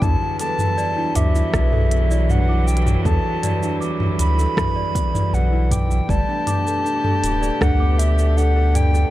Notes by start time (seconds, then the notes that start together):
Already playing: D4 E4 F#4
0.02 E2 E3 F#3 G3 A5, kick, mid tom, shaker
0.22 F#4
0.40 B3 A4 A5, closed hi-hat, shaker
0.59 E4, mid tom, shaker
0.78 B3 D5, shaker
0.96 D4 E4
1.15 D2 F#4 E5 D6, closed hi-hat, mid tom, shaker
1.35 E4, shaker
1.54 B1 E2, kick, cross-stick, shaker
1.72 F#4 A4, mid tom
1.91 B3, closed hi-hat
2.11 E4 D5, shaker
2.29 B3 D4 F#5, mid tom, shaker
2.49 E4 D6
2.67 G5, shaker
2.77 closed hi-hat
2.86 E4, mid tom, shaker
3.05 E2 A4 A5, kick, shaker
3.25 F#4
3.43 B3 D5, closed hi-hat, mid tom, shaker
3.63 D4 E4, shaker
3.81 B3 D6, shaker
4.00 E4, mid tom
4.03 mid tom
4.06 mid tom
4.09 mid tom
4.13 mid tom
4.16 D2 F#4 B5, closed hi-hat, mid tom, shaker
4.38 E4 A4, shaker
4.57 E2, kick, cross-stick, mid tom, shaker
4.76 F#4 D5
4.95 B3, kick, closed hi-hat, shaker
5.14 E4 D5, mid tom, shaker
5.33 B1 B3 F#5, shaker
5.53 E4
5.71 G5 D6, kick, closed hi-hat, mid tom, shaker
5.90 E4, shaker
6.09 G1 B2 G3 A3 G4 D5 A5, kick, shaker
6.28 B3 D4
6.47 D4 D6, closed hi-hat, mid tom, shaker
6.67 A4, shaker
6.85 D4, shaker
7.04 A4, mid tom
7.23 D1 B3, closed hi-hat, shaker
7.42 A4 D5, shaker
7.61 D2 G3 D4 F#5, kick, cross-stick, mid tom, shaker
7.80 B3 D6
7.99 D4 E5, closed hi-hat, shaker
8.18 A4, shaker
8.37 D4 A4 F#5, shaker
8.56 A4
8.75 B3 D5 G5, closed hi-hat, mid tom, shaker
8.94 D4 A4, shaker